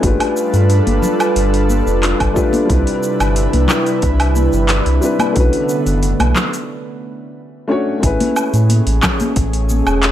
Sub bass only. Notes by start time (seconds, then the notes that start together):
0.03 G1
0.54 G2
0.87 G1
1.36 G1
1.86 F1
2.20 G1
2.70 C2
3.20 G1
3.54 C2
4.03 C2
4.53 G1
4.86 C2
5.36 B1
5.86 F#1
6.20 B1
8.03 A1
8.53 A2
8.87 A1
9.36 A1
9.87 E1